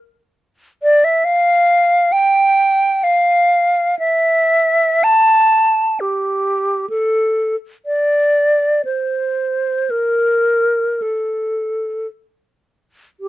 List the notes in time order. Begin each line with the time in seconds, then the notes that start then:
0.83 D5
1.04 E5
1.25 F5
2.12 G5
3.04 F5
3.99 E5
5.04 A5
6.00 G4
6.90 A4
7.86 D5
8.85 C5
9.90 A#4
11.02 A4
13.20 G4